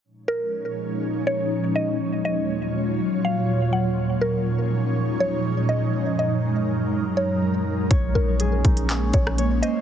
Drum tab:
HH |----------------|----------------|----------------|----------------|
CP |----------------|----------------|----------------|----------------|
SD |----------------|----------------|----------------|----------------|
BD |----------------|----------------|----------------|----------------|

HH |x---x-xxx-x-x-x-|
CP |--------x-------|
SD |-----------r----|
BD |o-----o---o-----|